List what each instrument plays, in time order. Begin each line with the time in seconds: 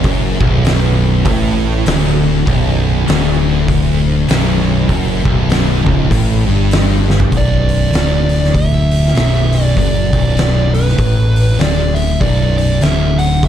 0.04 picked electric bass F#1, distorted electric guitar F#2, kick, open hi-hat
0.40 picked electric bass B0, distorted electric guitar B1, kick
0.65 snare, open hi-hat
1.25 picked electric bass A1, distorted electric guitar A2, kick, open hi-hat
1.86 picked electric bass D1, distorted electric guitar D2, snare, open hi-hat
2.47 picked electric bass B0, distorted electric guitar B1, kick, open hi-hat
3.07 picked electric bass D1, distorted electric guitar D2, snare, open hi-hat
3.68 kick, open hi-hat
4.28 picked electric bass B0, distorted electric guitar B1, snare, open hi-hat
4.88 picked electric bass F#1, distorted electric guitar F#2, kick, open hi-hat
5.25 picked electric bass B0, distorted electric guitar B1, kick
5.50 snare, open hi-hat
5.85 picked electric bass C#1, distorted electric guitar C#2, kick
6.11 picked electric bass A1, distorted electric guitar A2, kick, open hi-hat
6.47 picked electric bass G1, distorted electric guitar G2
6.71 snare, open hi-hat
7.10 snare
7.20 floor tom
7.31 picked electric bass B0, distorted electric guitar B1, kick, open hi-hat
7.37 lead electric guitar D5
7.69 open hi-hat
7.92 picked electric bass D1, distorted electric guitar D2, snare, open hi-hat
8.29 open hi-hat
8.45 snare
8.55 lead electric guitar E5, kick, open hi-hat
8.91 open hi-hat
9.06 snare
9.14 picked electric bass B0, distorted electric guitar B1, snare, open hi-hat
9.53 lead electric guitar D5, open hi-hat
9.76 picked electric bass F#1, distorted electric guitar F#2, lead electric guitar D5, kick, open hi-hat
10.10 picked electric bass B0, distorted electric guitar B1, kick, open hi-hat
10.37 snare, open hi-hat
10.74 lead electric guitar B4, open hi-hat
10.89 snare
10.96 picked electric bass A1, distorted electric guitar A2, kick, open hi-hat
11.36 open hi-hat
11.58 picked electric bass D1, distorted electric guitar D2, lead electric guitar D5, snare, open hi-hat
11.95 lead electric guitar E5, open hi-hat
12.19 picked electric bass B0, distorted electric guitar B1, lead electric guitar D5, kick, open hi-hat
12.58 lead electric guitar D5, open hi-hat
12.80 picked electric bass D1, distorted electric guitar D2, lead electric guitar E5, snare, open hi-hat
13.19 lead electric guitar F#5, open hi-hat
13.43 kick, open hi-hat